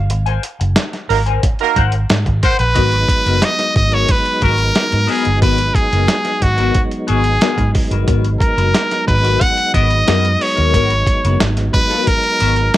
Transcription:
Already playing: fingered electric bass G1
0.10 fingered electric bass G#1, muted clean electric guitar stroke, closed hi-hat
0.26 clean electric guitar A#4 C5 G#5, closed hi-hat
0.43 muted clean electric guitar stroke, closed hi-hat
0.60 fingered electric bass F#1, muted clean electric guitar stroke, closed hi-hat
0.76 muted clean electric guitar stroke, snare, closed hi-hat
0.93 muted clean electric guitar stroke, snare, closed hi-hat
1.09 fingered electric bass G#1, horn section A#3 D#4 F#4 A#4, open hi-hat
1.26 clean electric guitar A#4 C5 G#5, closed hi-hat
1.43 muted clean electric guitar stroke, kick, closed hi-hat
1.59 horn section A#3 D#4 F#4 A#4, muted clean electric guitar stroke, closed hi-hat
1.76 fingered electric bass G#1, clean electric guitar A#4 C5 F#5, kick, closed hi-hat
1.92 muted clean electric guitar stroke, closed hi-hat
2.10 fingered electric bass G#2, muted clean electric guitar stroke, snare, closed hi-hat
2.26 fingered electric bass G#1, muted clean electric guitar stroke, kick, closed hi-hat
2.43 clean electric guitar A#4 C5 F#5, trumpet C5, kick, closed hi-hat
2.59 fingered electric bass A#1, trumpet B4, muted clean electric guitar stroke, closed hi-hat
2.74 fingered electric bass G#1, tonewheel organ F#3 G#3 B3 D#4, clean electric guitar B3 F#4 A#4, kick, closed hi-hat
2.92 closed hi-hat
3.09 muted clean electric guitar stroke, kick, closed hi-hat
3.25 fingered electric bass F#1, clean electric guitar B3 F#4 A#4, closed hi-hat
3.42 trumpet D#5, muted clean electric guitar stroke, snare, closed hi-hat
3.59 muted clean electric guitar stroke, snare, closed hi-hat
3.76 fingered electric bass G#1, trumpet D#5, kick, closed hi-hat
3.92 clean electric guitar B3 F#4 A#4, trumpet C#5, closed hi-hat
4.08 trumpet B4, muted clean electric guitar stroke, kick, closed hi-hat
4.24 muted clean electric guitar stroke, closed hi-hat
4.42 fingered electric bass G#1, clean electric guitar B3 F#4 A#4, trumpet A#4, kick, closed hi-hat
4.58 muted clean electric guitar stroke, closed hi-hat
4.75 snare, closed hi-hat
4.91 fingered electric bass G#2, muted clean electric guitar stroke, closed hi-hat
5.07 clean electric guitar B3 F#4 A#4, trumpet G#4, open hi-hat
5.25 fingered electric bass G1, muted clean electric guitar stroke, closed hi-hat
5.41 fingered electric bass G#1, clean electric guitar B3 F#4 A#4, trumpet B4, kick, closed hi-hat
5.58 closed hi-hat
5.75 trumpet G#4, muted clean electric guitar stroke, kick, closed hi-hat
5.92 fingered electric bass F#1, clean electric guitar B3 F#4 A#4, closed hi-hat
6.08 muted clean electric guitar stroke, snare, closed hi-hat
6.25 muted clean electric guitar stroke, snare, closed hi-hat
6.42 fingered electric bass G#1, trumpet F#4, kick, closed hi-hat
6.58 clean electric guitar B3 F#4 A#4, closed hi-hat
6.74 muted clean electric guitar stroke, kick, closed hi-hat
6.91 muted clean electric guitar stroke, closed hi-hat
7.07 fingered electric bass G#1, clean electric guitar B3 F#4 A#4, trumpet G#4, closed hi-hat
7.24 muted clean electric guitar stroke, closed hi-hat
7.41 clean electric guitar B3 F#4 A#4, snare, closed hi-hat
7.58 fingered electric bass G#2, kick, closed hi-hat
7.74 muted clean electric guitar stroke, kick, open hi-hat
7.91 fingered electric bass G1, clean electric guitar B3 F#4 A#4, closed hi-hat
8.07 fingered electric bass G#1, clean electric guitar B3 F#4 A#4, kick, closed hi-hat
8.25 closed hi-hat
8.40 trumpet A#4, muted clean electric guitar stroke, kick, closed hi-hat
8.56 fingered electric bass F#1, clean electric guitar B3 F#4 A#4, closed hi-hat
8.75 snare, closed hi-hat
8.90 muted clean electric guitar stroke, snare, closed hi-hat
9.08 fingered electric bass G#1, trumpet B4, kick, closed hi-hat
9.23 clean electric guitar B3 F#4 A#4, closed hi-hat
9.40 trumpet F#5, muted clean electric guitar stroke, kick, closed hi-hat
9.56 muted clean electric guitar stroke, closed hi-hat
9.74 fingered electric bass G#1, clean electric guitar B3 F#4 A#4, trumpet D#5, kick, closed hi-hat
9.90 muted clean electric guitar stroke, closed hi-hat
10.06 fingered electric bass F#2, clean electric guitar B3 F#4 A#4, snare, closed hi-hat
10.25 closed hi-hat
10.40 trumpet C#5, muted clean electric guitar stroke, open hi-hat
10.56 fingered electric bass D#2, clean electric guitar B3 F#4 A#4, closed hi-hat
10.73 fingered electric bass G#1, clean electric guitar B3 F#4 A#4, kick, closed hi-hat
10.90 closed hi-hat
11.07 muted clean electric guitar stroke, kick, closed hi-hat
11.24 fingered electric bass F#1, clean electric guitar B3 F#4 A#4, closed hi-hat
11.40 fingered electric bass G#1, muted clean electric guitar stroke, snare, closed hi-hat
11.57 muted clean electric guitar stroke, snare, closed hi-hat
11.74 trumpet B4, kick, closed hi-hat
11.90 clean electric guitar B3 F#4 A#4, closed hi-hat
12.07 trumpet A#4, muted clean electric guitar stroke, kick, closed hi-hat
12.24 muted clean electric guitar stroke, closed hi-hat
12.40 fingered electric bass G#1, clean electric guitar B3 F#4 A#4, closed hi-hat
12.56 muted clean electric guitar stroke, closed hi-hat
12.74 closed hi-hat

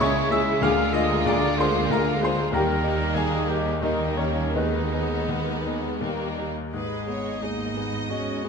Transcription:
Already playing: double bass section C#2, cello section C#3, grand piano G#3 E4 G#4 A#4 D#5 E5 G#5 A#5 D#6 E6, viola section G#3, violin section E4
0.00 grand piano C#2 C#3 C#5 G#5 C#6, violin section G#3, clarinet C#5, oboe C#5, flute E5
0.16 violin section G#3
0.30 violin section G#3, grand piano G#3 E4 G#4 E5 E6, clarinet E5, oboe E5
0.46 violin section G#3
0.61 double bass section D2, grand piano D2 D3 F5 D6 F6, cello section D3, violin section G#3 F4, french horn section A#3 G#4, clarinet F5, flute F5, oboe F5
0.77 violin section A#3
0.93 violin section G#3, grand piano A#3 F4 G#4 D#5 D#6, clarinet D#5, oboe D#5
1.10 violin section A#3
1.25 grand piano D2 D3 D5 A#5 D6, violin section G#3, clarinet D5, oboe D5
1.42 violin section A#3
1.58 violin section G#3, grand piano A#3 F4 G#4 C5 C6, oboe C5, clarinet C5
1.76 violin section A#3
1.90 grand piano D2 D3 A#5, violin section G#3, oboe A#4, clarinet A#4
1.94 grand piano A#4 F5
2.08 violin section A#3
2.22 violin section G#3, grand piano A#3 F4 G#4 C6, oboe C5, clarinet C5
2.26 grand piano C5
2.38 violin section A#3
2.52 grand piano D#2 D#3 A#4 G5 A#5, double bass section D#2, cello section D#3, viola section G3, violin section A#3 D#4, french horn section A#3 G4, oboe A#4, clarinet A#4, flute G5
2.83 grand piano A#3 D#4 G4
3.15 grand piano D#2 D#3 G#4 G#5, clarinet G#4, oboe G#4, flute D#5
3.47 grand piano A#3 D#4 G4 G5, clarinet G4, oboe G4
3.82 grand piano D#2 D#3 D#4 A#4 D#5, viola section G3, violin section A#3 D#4, clarinet D#4, oboe D#4, flute A#4
4.17 grand piano A#3 C#4 D#4 G4 C#5, clarinet C#4, oboe C#4
4.53 grand piano D#2 D#3 D#4 B4 D#5, viola section G#3, french horn section B3 G#4, violin section B3 D#4, oboe D#4, clarinet D#4, flute B4
4.93 grand piano B3 D#4 G#4
5.29 grand piano D#2 D#3
5.66 grand piano B3 D#4 G#4
6.01 grand piano D#2 D#3, viola section G3, french horn section A#3 G4, violin section A#3 D#4
6.37 grand piano A#3 D#4 G4
6.73 double bass section G#1, grand piano G#2, cello section G#2, viola section G#3, clarinet G#4, violin section B4 D#5
7.08 grand piano B3 G#4, violin section C#5
7.42 viola section A#3, grand piano D#4 G#4, clarinet D#4, violin section D#5
7.76 grand piano B3 G#4, viola section B3
8.09 viola section C#4, grand piano D#4 G#4, clarinet F#4
8.44 viola section B3, grand piano B3 G#4

